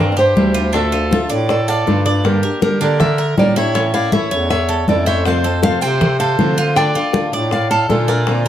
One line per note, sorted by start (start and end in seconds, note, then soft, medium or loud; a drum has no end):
0.00 0.32 G2 medium
0.00 0.16 C4 medium
0.00 0.11 D5 medium
0.11 0.17 A#4 medium
0.11 0.18 D5 medium
0.17 0.54 G4 medium
0.17 0.71 G4 medium
0.17 0.71 C5 medium
0.17 high conga soft
0.35 1.25 D2 medium
0.35 0.54 C3 medium
0.35 0.54 E3 medium
0.35 0.55 G3 medium
0.35 0.54 D4 medium
0.35 0.53 E4 medium
0.35 high bongo soft
0.35 low bongo medium
0.35 high conga medium
0.54 0.74 G3 soft
0.54 0.73 D4 soft
0.54 0.73 E4 medium
0.54 0.73 F4 medium
0.54 high bongo soft
0.54 high conga soft
0.73 0.92 D3 medium
0.73 0.92 A3 medium
0.73 0.92 D4 medium
0.73 0.91 F4 medium
0.73 1.27 A4 medium
0.73 1.27 E5 loud
0.73 high bongo medium
0.73 high conga soft
0.92 1.11 A3 soft
0.92 1.11 D4 soft
0.92 1.29 F4 medium
0.92 1.11 F4 soft
0.92 high bongo soft
0.92 high conga soft
1.11 1.30 D3 medium
1.11 1.30 A3 medium
1.11 1.30 D4 medium
1.11 1.29 F4 medium
1.11 high bongo medium
1.11 high conga loud
1.29 1.83 A2 loud
1.29 1.48 A3 soft
1.29 1.49 D4 medium
1.29 1.48 F4 medium
1.29 1.66 D5 medium
1.29 high bongo soft
1.29 high conga soft
1.49 1.70 A4 medium
1.49 1.68 D5 loud
1.49 muted steel-string acoustic guitar stroke medium
1.49 high bongo medium
1.49 high conga soft
1.68 2.05 A4 medium
1.68 2.06 D5 medium
1.68 2.06 F5 medium
1.68 high conga soft
1.86 2.48 G2 loud
1.86 2.05 D3 medium
1.86 2.05 A3 medium
1.86 2.05 D4 medium
1.86 2.04 F4 medium
1.86 high bongo soft
1.86 low bongo medium
1.86 high conga medium
2.06 2.25 A3 soft
2.06 2.24 D4 medium
2.06 2.24 F4 soft
2.06 2.42 D5 medium
2.06 high bongo soft
2.06 high conga soft
2.24 2.42 D3 medium
2.24 2.43 G3 medium
2.24 2.43 A#3 medium
2.24 2.43 D4 medium
2.24 2.60 G4 medium
2.24 2.42 G4 medium
2.24 2.60 A#4 medium
2.24 high bongo medium
2.24 high conga soft
2.43 2.61 A#3 soft
2.43 2.62 D4 soft
2.43 2.61 G4 soft
2.43 2.80 A#4 medium
2.43 high bongo soft
2.43 high conga soft
2.61 2.80 D3 medium
2.61 2.80 G3 medium
2.61 2.80 A#3 medium
2.61 2.81 D4 medium
2.61 2.80 G4 medium
2.61 2.80 A#4 medium
2.61 high bongo medium
2.61 high conga medium
2.81 3.33 D3 loud
2.81 2.99 A#3 soft
2.81 3.17 D4 medium
2.81 2.99 D4 medium
2.81 2.99 G4 medium
2.81 2.99 A#4 medium
2.81 2.99 D5 medium
2.81 high bongo soft
3.00 3.36 A#4 medium
3.00 3.35 E5 loud
3.00 muted steel-string acoustic guitar stroke medium
3.00 high bongo medium
3.00 high conga soft
3.00 low conga medium
3.18 3.55 A#4 medium
3.18 high conga soft
3.37 4.26 A2 medium
3.37 3.56 D3 medium
3.37 3.56 G3 medium
3.37 3.56 A#3 medium
3.37 3.56 D4 medium
3.37 3.55 G4 medium
3.37 3.55 A#4 medium
3.37 3.56 D5 medium
3.37 high bongo soft
3.37 low bongo medium
3.37 high conga medium
3.56 3.74 A#3 soft
3.56 3.75 D4 medium
3.56 3.75 E4 medium
3.56 3.74 G4 medium
3.56 3.92 C#5 medium
3.56 3.92 E5 medium
3.56 high bongo soft
3.56 high conga soft
3.74 3.93 E3 medium
3.74 3.93 A3 medium
3.74 3.93 C#4 medium
3.74 3.92 E4 medium
3.74 high bongo medium
3.74 high conga soft
3.94 4.12 A3 soft
3.94 4.12 C#4 soft
3.94 4.12 E4 medium
3.94 4.30 E4 medium
3.94 4.12 D5 medium
3.94 4.12 F5 medium
3.94 high bongo soft
3.94 high conga soft
4.12 4.31 E3 medium
4.12 4.31 A3 medium
4.12 4.31 C#4 medium
4.12 4.31 E4 medium
4.12 4.48 C#5 medium
4.12 4.48 E5 loud
4.12 high bongo medium
4.12 high conga medium
4.31 4.84 E2 medium
4.31 4.50 A3 soft
4.31 4.50 C#4 soft
4.31 4.50 E4 medium
4.31 4.68 C#5 medium
4.31 high bongo soft
4.31 high conga soft
4.50 4.86 C#5 medium
4.50 4.89 E5 loud
4.50 muted steel-string acoustic guitar stroke medium
4.50 high bongo medium
4.50 high conga soft
4.69 5.06 A4 medium
4.69 high conga soft
4.87 5.76 F2 medium
4.87 5.06 E3 medium
4.87 5.06 A3 medium
4.87 5.06 C#4 medium
4.87 5.05 E4 medium
4.87 5.06 A4 medium
4.87 5.06 D5 medium
4.87 high bongo soft
4.87 low bongo medium
4.87 high conga medium
5.06 5.26 A3 soft
5.06 5.25 C#4 soft
5.06 5.25 E4 soft
5.06 5.43 C5 medium
5.06 5.28 C#5 medium
5.06 5.26 E5 medium
5.06 high bongo soft
5.06 high conga soft
5.25 5.44 C3 medium
5.25 5.44 F3 medium
5.25 5.44 A3 medium
5.25 5.45 C4 medium
5.25 5.43 F4 medium
5.25 5.63 C5 medium
5.25 5.63 F5 medium
5.25 high bongo medium
5.25 high conga soft
5.44 5.63 A3 soft
5.44 5.63 C4 soft
5.44 5.63 F4 medium
5.44 5.81 A4 medium
5.44 high bongo soft
5.44 high conga soft
5.63 5.81 C3 medium
5.63 5.82 F3 medium
5.63 5.82 A3 medium
5.63 5.82 C4 medium
5.63 5.81 F4 medium
5.63 5.82 C5 medium
5.63 5.81 F5 loud
5.63 high bongo medium
5.63 high conga medium
5.81 6.35 C3 loud
5.81 6.00 A3 soft
5.81 6.19 C4 medium
5.81 6.01 C4 medium
5.81 6.00 F4 medium
5.81 6.19 C5 medium
5.81 6.19 G5 medium
5.81 high bongo soft
6.01 muted steel-string acoustic guitar stroke medium
6.01 high bongo medium
6.01 high conga soft
6.01 low conga medium
6.19 6.57 A4 medium
6.19 6.72 C5 medium
6.19 6.76 F5 loud
6.19 high conga soft
6.38 6.57 C3 medium
6.38 7.00 D3 medium
6.38 6.57 F3 medium
6.38 6.57 A3 medium
6.38 6.57 C4 medium
6.38 6.56 F4 medium
6.38 high bongo soft
6.38 low bongo medium
6.38 high conga medium
6.57 6.76 A3 soft
6.57 6.76 C4 soft
6.57 6.75 F4 medium
6.57 6.76 F4 medium
6.57 high bongo soft
6.57 high conga soft
6.75 6.94 D3 medium
6.75 6.95 A3 medium
6.75 6.95 D4 medium
6.75 6.94 F4 medium
6.75 7.29 D5 medium
6.75 7.29 G5 loud
6.75 high bongo medium
6.75 high conga soft
6.95 7.13 A3 soft
6.95 7.14 D4 medium
6.95 7.13 F4 medium
6.95 7.32 F4 medium
6.95 high bongo soft
6.95 high conga soft
7.13 7.32 D3 medium
7.13 7.33 A3 medium
7.13 7.33 D4 medium
7.13 7.31 F4 medium
7.13 high bongo medium
7.13 high conga loud
7.32 7.85 A2 medium
7.32 7.51 A3 soft
7.32 7.52 D4 soft
7.32 7.51 F4 medium
7.32 7.70 D5 medium
7.32 high bongo soft
7.32 high conga soft
7.51 7.69 D5 medium
7.51 7.70 F5 loud
7.51 muted steel-string acoustic guitar stroke medium
7.51 high bongo medium
7.51 high conga soft
7.70 8.07 A4 medium
7.70 7.88 F5 medium
7.70 7.90 A5 loud
7.70 high conga soft
7.89 8.48 A#2 loud
7.89 8.08 D3 medium
7.89 8.08 A3 medium
7.89 8.08 D4 medium
7.89 8.08 F4 medium
7.89 8.07 F4 medium
7.89 8.09 A4 medium
7.89 high bongo soft
7.89 low bongo medium
7.89 high conga medium
8.08 8.27 A3 soft
8.08 8.27 D4 soft
8.08 8.48 F4 medium
8.08 8.27 F4 medium
8.08 8.48 A#4 loud
8.08 8.45 D5 medium
8.08 high bongo soft
8.08 high conga soft
8.27 8.45 D3 medium
8.27 8.45 A#3 medium
8.27 8.45 C4 medium
8.27 8.45 F4 medium
8.27 high bongo medium
8.27 high conga soft